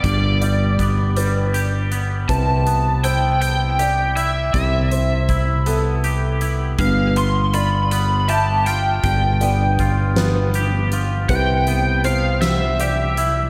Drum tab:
HH |xxxxxx|xxxxxx|xxxxxx|xxxxxx|
SD |------|------|------|------|
BD |o-o---|o-----|o-o---|o-----|

HH |xxxxxx|xxxxxx|
SD |---o--|---o--|
BD |o-o---|o-----|